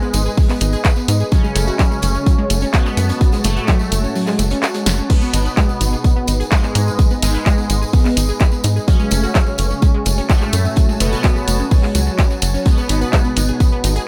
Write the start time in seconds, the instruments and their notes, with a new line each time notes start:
Already playing: analog polysynth G#2 G#3, ambient pad G#3 G#4 B4 D#5
0.02 synth pluck B3 B4, tambourine
0.13 analog synth bass G#1, synth pluck D#4 D#5, closed hi-hat, tambourine
0.26 synth pluck G#4 G#5, tambourine
0.37 synth pluck G#3 G#4, kick, open hi-hat, tambourine
0.49 synth pluck B3 B4, snare, clap, tambourine
0.60 analog synth bass G#1, synth pluck D#4 D#5, closed hi-hat, tambourine
0.72 synth pluck G#4 G#5, tambourine
0.84 synth pluck B4 B5, kick, snare, clap, closed hi-hat, tambourine
0.96 synth pluck B3 B4, tambourine
1.08 analog synth bass G#2, synth pluck D#4 D#5, closed hi-hat, tambourine
1.20 synth pluck G#4 G#5, tambourine
1.32 analog polysynth C#3 C#4, synth pluck F#3 F#4, ambient pad F#4 C#5 G#5 A5, kick, closed hi-hat, tambourine
1.44 synth pluck G#3 G#4, tambourine
1.55 analog synth bass F#1, synth pluck A3 A4, closed hi-hat, tambourine
1.68 synth pluck F#4 F#5, tambourine
1.79 synth pluck F#3 F#4, kick, snare, clap, closed hi-hat, tambourine
1.91 synth pluck G#3 G#4, tambourine
2.02 analog synth bass F#1, synth pluck A3 A4, closed hi-hat, tambourine
2.14 synth pluck C#4 C#5, tambourine
2.26 synth pluck F#3 F#4, kick, closed hi-hat, tambourine
2.38 synth pluck G#3 G#4
2.50 analog synth bass F#1, synth pluck A3 A4, snare, closed hi-hat, tambourine
2.61 synth pluck C#4 C#5, closed hi-hat, tambourine
2.73 analog polysynth B2 B3, synth pluck F#4 F#5, kick, snare, clap, closed hi-hat, tambourine
2.86 synth pluck G#3 G#4, snare, clap, tambourine
2.97 analog synth bass F#2, synth pluck A3 A4, snare, closed hi-hat, tambourine
3.09 synth pluck C#4 C#5, snare, closed hi-hat, tambourine
3.21 synth pluck F#3 F#4, ambient pad F#5, kick, snare, closed hi-hat, tambourine
3.32 synth pluck G#3 G#4, snare, closed hi-hat, tambourine
3.44 analog synth bass F#1, analog polysynth A2 A3, synth pluck A3 A4, closed hi-hat, tambourine
3.56 synth pluck F#4 F#5, closed hi-hat, tambourine
3.68 synth pluck F#3 F#4, kick, snare, clap, closed hi-hat, tambourine
3.79 synth pluck G#3 G#4, tambourine
3.92 analog synth bass F#1, synth pluck A3 A4, closed hi-hat, tambourine
4.04 synth pluck C#4 C#5, tambourine
4.15 synth pluck F#3 F#4, open hi-hat, tambourine
4.27 synth pluck G#3 G#4, snare, clap, tambourine
4.39 analog synth bass F#1, synth pluck A3 A4, snare, closed hi-hat, tambourine
4.50 synth pluck C#4 C#5, snare, closed hi-hat, tambourine
4.62 synth pluck F#4 F#5, snare, clap, closed hi-hat, tambourine
4.74 synth pluck G#3 G#4, snare, closed hi-hat, tambourine
4.86 analog synth bass F#1, synth pluck A3 A4, snare, closed hi-hat, tambourine
4.98 synth pluck C#4 C#5, tambourine
5.10 analog polysynth B2 B3, ambient pad G#3 G#4 B4 D#5, synth pluck G#3 G#4, kick, closed hi-hat, crash, tambourine
5.22 synth pluck B3 B4, tambourine
5.33 analog synth bass G#1, synth pluck D#4 D#5, closed hi-hat, tambourine
5.45 synth pluck B4 B5, tambourine
5.57 synth pluck G#3 G#4, kick, snare, clap, closed hi-hat, tambourine
5.69 synth pluck B3 B4, tambourine
5.81 analog synth bass G#1, synth pluck D#4 D#5, closed hi-hat, tambourine
5.93 synth pluck G#4 G#5, tambourine
6.04 synth pluck B3 B4, kick, closed hi-hat, tambourine
6.16 synth pluck B3 B4
6.27 analog synth bass G#1, synth pluck D#4 D#5, snare, closed hi-hat, tambourine
6.40 synth pluck G#4 G#5, closed hi-hat, tambourine
6.52 analog polysynth G#2 G#3, synth pluck B4 B5, kick, snare, clap, closed hi-hat, tambourine
6.64 synth pluck B3 B4, snare, clap, tambourine
6.75 analog synth bass G#2, synth pluck D#4 D#5, closed hi-hat, tambourine
6.87 synth pluck G#4 G#5, tambourine
6.99 synth pluck G#3 G#4, kick, closed hi-hat, tambourine
7.10 synth pluck B3 B4, tambourine
7.22 analog synth bass G#1, analog polysynth G#2 G#3, synth pluck D#4 D#5, closed hi-hat, tambourine
7.34 synth pluck B4 B5, closed hi-hat
7.45 synth pluck G#3 G#4, kick, snare, clap, closed hi-hat, tambourine
7.58 synth pluck B3 B4, tambourine
7.70 analog synth bass G#1, synth pluck D#4 D#5, closed hi-hat, tambourine
7.82 synth pluck G#4 G#5, tambourine
7.93 synth pluck B3 B4, kick, open hi-hat, tambourine
8.05 synth pluck B3 B4, snare, clap, tambourine
8.17 analog synth bass G#1, synth pluck D#4 D#5, closed hi-hat, tambourine
8.29 synth pluck G#4 G#5, tambourine
8.40 synth pluck B4 B5, kick, snare, clap, closed hi-hat, tambourine
8.51 synth pluck B3 B4, tambourine
8.64 analog synth bass G#2, synth pluck D#4 D#5, closed hi-hat, tambourine
8.76 synth pluck G#4 G#5, tambourine
8.88 analog polysynth C#3 C#4, synth pluck F#3 F#4, ambient pad F#4 C#5 G#5 A5, kick, closed hi-hat, tambourine
8.99 synth pluck G#3 G#4, tambourine
9.11 analog synth bass F#1, synth pluck A3 A4, closed hi-hat, tambourine
9.23 synth pluck F#4 F#5, tambourine
9.35 synth pluck F#3 F#4, kick, snare, clap, closed hi-hat, tambourine
9.46 synth pluck G#3 G#4, tambourine
9.58 analog synth bass F#1, synth pluck A3 A4, closed hi-hat, tambourine
9.71 synth pluck C#4 C#5, tambourine
9.82 synth pluck G#3 G#4, kick, closed hi-hat, tambourine
9.94 synth pluck G#3 G#4
10.05 analog synth bass F#1, synth pluck A3 A4, snare, closed hi-hat, tambourine
10.18 synth pluck C#4 C#5, closed hi-hat, tambourine
10.29 analog polysynth A2 A3, synth pluck F#4 F#5, kick, snare, clap, closed hi-hat, tambourine
10.41 synth pluck G#3 G#4, clap, tambourine
10.53 analog synth bass F#2, synth pluck A3 A4, closed hi-hat, tambourine
10.65 synth pluck C#4 C#5, tambourine
10.76 synth pluck F#3 F#4, kick, closed hi-hat, tambourine
10.89 synth pluck G#3 G#4, tambourine
11.00 analog synth bass F#1, analog polysynth B2 B3, synth pluck A3 A4, closed hi-hat, tambourine
11.12 synth pluck F#4 F#5, closed hi-hat, tambourine
11.23 synth pluck F#3 F#4, kick, snare, clap, closed hi-hat, tambourine
11.36 synth pluck G#3 G#4, tambourine
11.48 analog synth bass F#1, synth pluck A3 A4, closed hi-hat, tambourine
11.59 synth pluck C#4 C#5, tambourine
11.71 synth pluck G#3 G#4, kick, open hi-hat, tambourine
11.83 synth pluck G#3 G#4, snare, clap, tambourine
11.95 analog synth bass C#2, synth pluck F#3 F#4, closed hi-hat, tambourine
12.07 synth pluck F#3 F#4, tambourine
12.18 synth pluck C#4 C#5, kick, snare, clap, closed hi-hat, tambourine
12.30 synth pluck F#3 F#4, tambourine
12.42 analog synth bass F#1, synth pluck F#3 F#4, closed hi-hat, tambourine
12.54 synth pluck C#4 C#5, tambourine
12.65 analog polysynth B2 B3, ambient pad G#3 G#4 B4 D#5, synth pluck G#3 G#4, kick, closed hi-hat, tambourine
12.78 synth pluck B3 B4, tambourine
12.89 analog synth bass G#1, synth pluck D#4 D#5, closed hi-hat, tambourine
13.01 synth pluck B4 B5, tambourine
13.13 synth pluck G#3 G#4, kick, snare, clap, closed hi-hat, tambourine
13.24 synth pluck B3 B4, tambourine
13.36 analog synth bass G#1, synth pluck D#4 D#5, closed hi-hat, tambourine
13.49 synth pluck G#4 G#5, tambourine
13.60 synth pluck B3 B4, kick, closed hi-hat, tambourine
13.72 synth pluck B3 B4
13.84 analog synth bass G#1, synth pluck D#4 D#5, snare, closed hi-hat, tambourine
13.95 synth pluck G#4 G#5, closed hi-hat, tambourine